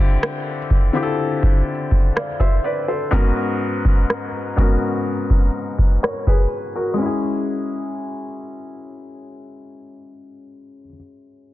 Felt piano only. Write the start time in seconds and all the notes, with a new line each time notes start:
Already playing: D3 C4 E4 F4 G4
0.93 D3 C4 E4 F4 G4
1.03 A4
2.16 D5 F5
2.40 C5 E5
2.64 B4 D5
2.88 A4 C5
3.11 G#2 B3 C#4 F#4 A#4
4.56 G#2 B3 C#4 F#4 A#4
6.03 A#4 C#5
6.27 G#4 B4
6.76 F#4 A#4
6.94 G#3
6.98 C#4 E4
7.06 G#4